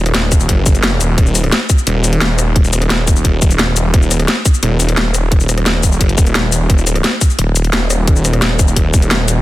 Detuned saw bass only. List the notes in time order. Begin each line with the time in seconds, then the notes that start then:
Already playing: D#1
0.49 F#1
1.01 D#1
1.18 D#1
1.87 D#1
3.25 D#1
3.42 D#1
3.94 D#1
4.63 D#1
6.01 F#1
6.18 D#1
6.70 D#1
7.39 D#1
8.76 D#1
8.94 D#1